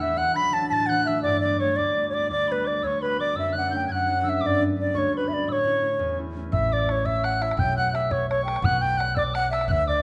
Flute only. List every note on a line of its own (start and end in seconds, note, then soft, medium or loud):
0.01 0.19 E5 medium
0.17 0.35 F#5 loud
0.35 0.55 B5 loud
0.53 0.68 A5 medium
0.69 0.88 A5 medium
0.86 1.05 F#5 medium
1.05 1.22 E5 medium
1.22 1.40 D5 medium
1.40 1.58 D5 medium
1.60 1.78 C#5 medium
1.76 2.08 D5 medium
2.10 2.15 C#5 medium
2.14 2.31 D5 medium
2.32 2.53 D5 medium
2.52 2.69 B4 medium
2.67 2.86 D5 medium
2.84 3.01 C#5 medium
3.02 3.18 B4 medium
3.20 3.36 D5 medium
3.39 3.55 E5 medium
3.58 3.72 F#5 medium
3.76 3.90 G5 medium
3.94 4.31 F#5 medium
4.29 4.48 E5 medium
4.46 4.63 D5 medium
4.80 5.00 D5 medium
4.98 5.15 C#5 medium
5.17 5.30 B4 medium
5.28 5.35 E5 medium
5.33 5.49 D5 medium
5.51 6.17 C#5 medium
6.52 6.75 E5 medium
6.73 6.93 D5 medium
6.92 7.07 C#5 medium
7.06 7.27 E5 medium
7.25 7.43 F#5 medium
7.42 7.57 E5 medium
7.58 7.75 G5 medium
7.78 7.93 F#5 medium
7.93 8.13 E5 medium
8.11 8.29 C#5 medium
8.29 8.44 C#5 medium
8.45 8.61 G5 medium
8.63 8.80 F#5 medium
8.81 9.01 G5 medium
8.99 9.16 F#5 medium
9.16 9.22 D5 medium
9.36 9.50 F#5 loud
9.50 9.67 E5 medium
9.70 9.87 E5 loud
9.88 10.02 D5 medium